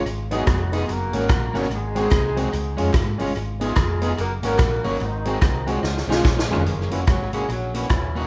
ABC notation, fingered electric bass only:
X:1
M:4/4
L:1/8
Q:"Swing" 1/4=145
K:G#dor
V:1 name="Fingered electric bass" clef=bass
G,,,2 E,,,2 F,,, G,,, z =G,,, | G,,,2 ^B,,,2 C,, E,, G,, =G,,, | G,,,2 E,,,2 F,,, G,,, A,,, =G,,, | G,,,2 ^B,,,2 C,, =B,,, A,,, E,,, |
[K:F#mix] F,,,2 G,,,2 A,,,2 D,,,2 |]